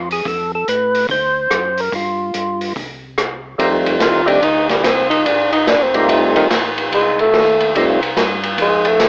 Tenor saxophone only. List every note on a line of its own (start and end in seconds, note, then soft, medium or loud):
4.01 4.29 F4 medium
4.28 4.45 D4 medium
4.44 4.69 D#4 medium
4.70 4.86 G3 medium
4.84 5.09 C4 medium
5.10 5.27 D#4 medium
5.26 5.52 D4 medium
5.53 5.70 D#4 medium
5.69 5.84 D4 medium
5.82 5.97 C4 medium
5.96 6.13 A#3 medium
6.11 6.36 A3 medium
6.36 6.45 D#3 medium
6.94 7.18 G#3 medium
7.21 7.73 A3 medium
8.62 8.89 G#3 medium
8.87 9.09 A3 medium